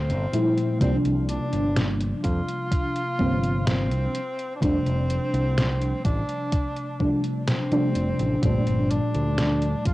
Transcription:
Already playing: D2 C4
0.10 G1, closed hi-hat
0.32 A#2 F3 G3 A3 E4, closed hi-hat
0.58 closed hi-hat
0.79 C2 C3 F3 G3 A#3 C4 D4, kick, closed hi-hat
1.05 C2, closed hi-hat
1.28 D4, closed hi-hat
1.53 G1, closed hi-hat
1.76 snare, closed hi-hat
2.01 closed hi-hat
2.23 F2 F4, kick, closed hi-hat
2.48 closed hi-hat
2.72 kick, closed hi-hat
2.96 closed hi-hat
3.19 G1 C3 F3 G3 A#3 C4, kick
3.44 closed hi-hat
3.67 C4, snare, closed hi-hat
3.91 C2, closed hi-hat
4.15 closed hi-hat
4.39 closed hi-hat
4.55 D4
4.61 F1 C3 F3 G3 A3 C4 D4, kick, closed hi-hat
4.86 F1, closed hi-hat
5.10 closed hi-hat
5.33 C2, closed hi-hat
5.58 snare, closed hi-hat
5.82 closed hi-hat
6.04 A1 D4, kick, closed hi-hat
6.29 closed hi-hat
6.52 kick, closed hi-hat
6.76 closed hi-hat
7.00 C3 F3 G3 A3 D4, kick
7.24 closed hi-hat
7.48 C4, snare, closed hi-hat
7.71 C3 F3 G3 A3 D4, closed hi-hat
7.95 F1, closed hi-hat
8.19 A1, closed hi-hat
8.41 G1 A#2 F3 G3 A3 C4 D4, kick, closed hi-hat
8.67 G1, closed hi-hat
8.91 D4, closed hi-hat
9.14 D2, closed hi-hat
9.38 snare, closed hi-hat
9.62 closed hi-hat
9.85 A#1 F4, kick, closed hi-hat

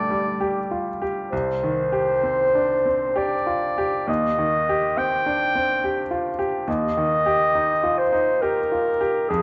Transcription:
Already playing: A#1 D3 G3 A3 G4 D5
0.10 G3
0.41 G4
0.71 F4
1.02 G4
1.31 C2 C5
1.63 D#3
1.92 G4
2.23 C4
2.55 D4
2.86 C4
3.16 G4 D5
3.47 F4
3.78 G4
4.07 D#2 D#5
4.38 D#3
4.69 G4
4.97 C4 G5
5.26 D4
5.55 C4
5.84 G4
6.11 F4
6.39 G4
6.67 D#2 D#5
6.97 D#3
7.26 G4
7.55 D#4
7.84 F4
7.98 C5
8.12 D#4
8.41 G4 A#4
8.72 F4
9.01 G4
9.29 F2 G#4

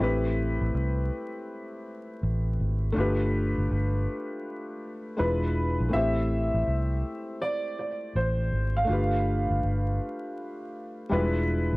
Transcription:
Already playing: A3 C4
0.00 A1 E4 G4 B4
0.61 A1
0.75 C2
2.23 A1
2.60 G#1
2.92 A3 D4 F4
2.97 G1 G4 B4
3.58 G1
3.71 G1
5.17 E1 G#3 D4 E4 F4 B4
5.80 A#1
5.89 A3 C4 E4
5.93 A1 G4 C5 E5
6.54 A1
6.68 C2
7.42 D5
7.79 D5
8.15 A1 C5
8.52 G#1
8.77 F5
8.85 A3 D4
8.89 G1 F4 G4 B4
9.50 G1
9.64 G1
11.09 E1 G3 D4 E4 F4 B4
11.16 G#3
11.73 A#1

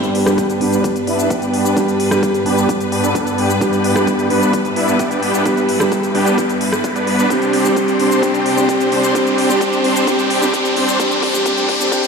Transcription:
Already playing: G2 G3 B3 D4 G4 B4, riser
0.03 closed hi-hat, shaker
0.15 open hi-hat
0.26 G3 B3 D4 G4, cross-stick, shaker
0.38 kick, closed hi-hat, shaker
0.50 closed hi-hat, shaker
0.60 G3 B3 D4 G4 B4, open hi-hat
0.73 closed hi-hat, shaker
0.84 kick, closed hi-hat, shaker
0.96 closed hi-hat, shaker
1.07 B3 D4 E4, open hi-hat
1.19 closed hi-hat, shaker
1.30 B3 D4 G4, kick, closed hi-hat, shaker
1.42 closed hi-hat, shaker
1.54 open hi-hat
1.65 closed hi-hat, shaker
1.76 G3 B3 D4 G4 B4, kick, closed hi-hat, shaker
1.88 closed hi-hat, shaker
2.00 open hi-hat
2.11 G3 B3 D4 G4, cross-stick, closed hi-hat, shaker
2.23 kick, closed hi-hat, shaker
2.34 closed hi-hat, shaker
2.45 G3 B3 D4 G4, open hi-hat
2.58 closed hi-hat, shaker
2.69 kick, closed hi-hat, shaker
2.81 closed hi-hat, shaker
2.92 B3 D4 G4, open hi-hat
3.04 B3 D4 A4, closed hi-hat, shaker
3.15 kick, closed hi-hat, shaker
3.27 closed hi-hat, shaker
3.38 B3 D4 G4, open hi-hat
3.50 closed hi-hat, shaker
3.60 G3 B3 D4 E4 G4, kick, closed hi-hat, shaker
3.73 closed hi-hat, shaker
3.84 open hi-hat
3.95 G3 B3 D4 G4, cross-stick, closed hi-hat, shaker
4.07 kick, closed hi-hat, shaker
4.19 closed hi-hat, shaker
4.29 G3 B3 D4 G4 B4, open hi-hat
4.42 closed hi-hat, shaker
4.53 kick, closed hi-hat, shaker
4.65 closed hi-hat, shaker
4.76 B3 D4 E4, open hi-hat
4.88 closed hi-hat, shaker
4.99 B3 D4 G4, kick, closed hi-hat, shaker
5.11 closed hi-hat, shaker
5.23 open hi-hat
5.34 closed hi-hat, shaker
5.45 G3 B3 D4 G4 B4, kick, closed hi-hat, shaker
5.57 closed hi-hat, shaker
5.69 open hi-hat
5.80 G3 B3 D4 G4, cross-stick, shaker
5.92 kick, closed hi-hat, shaker
6.03 closed hi-hat, shaker
6.14 G3 B3 D4 G4, open hi-hat
6.26 closed hi-hat, shaker
6.38 kick, closed hi-hat, shaker
6.49 closed hi-hat, shaker
6.61 open hi-hat
6.73 cross-stick, closed hi-hat, shaker
6.84 kick, closed hi-hat, shaker
6.96 B3 D4 B4, closed hi-hat, shaker
7.07 open hi-hat
7.19 B3 D4 B4, closed hi-hat, shaker
7.30 C3 G3 C4 D4 G4 C5, kick, closed hi-hat, shaker
7.42 closed hi-hat, shaker
7.53 open hi-hat
7.64 G3 C4 D4 G4, closed hi-hat, shaker
7.76 kick, closed hi-hat, shaker
7.88 closed hi-hat, shaker
7.98 G3 C4 D4 G4 C5, open hi-hat
8.11 closed hi-hat, shaker
8.22 G3 C4 D4 G4, kick, closed hi-hat, shaker
8.34 closed hi-hat, shaker
8.46 open hi-hat
8.57 G3 C4 D4 G4, closed hi-hat, shaker
8.69 kick, closed hi-hat, shaker
8.80 closed hi-hat, shaker
8.91 G3 C4 D4 G4 C5, open hi-hat
9.03 closed hi-hat, shaker
9.14 G3 C4 D4 G4, kick, closed hi-hat, shaker
9.27 closed hi-hat, shaker
9.38 open hi-hat
9.49 G3 C4 D4 G4, closed hi-hat, shaker
9.61 kick, closed hi-hat, shaker
9.73 closed hi-hat, shaker
9.83 G3 C4 D4 G4 C5, open hi-hat
9.96 closed hi-hat, shaker
10.07 G3 C4 D4 G4, kick, closed hi-hat, shaker
10.19 closed hi-hat, shaker
10.30 open hi-hat
10.41 G3 C4 D4 G4, shaker
10.53 kick, closed hi-hat, shaker
10.65 closed hi-hat, shaker
10.75 G3 C4 D4 G4 C5, open hi-hat
10.88 closed hi-hat, shaker
10.99 A2 E3 G3 C4 D4 G4 A4, kick, closed hi-hat, shaker
11.11 closed hi-hat, shaker
11.23 kick, open hi-hat
11.34 G3 C4 D4 G4, closed hi-hat, shaker
11.45 G3 C4 D4 G4, kick, closed hi-hat, shaker
11.57 closed hi-hat, shaker
11.69 kick, open hi-hat
11.80 G3 C4 D4 G4, closed hi-hat, shaker
11.91 G3 C4 D4 G4, kick, closed hi-hat, shaker
12.03 closed hi-hat, shaker

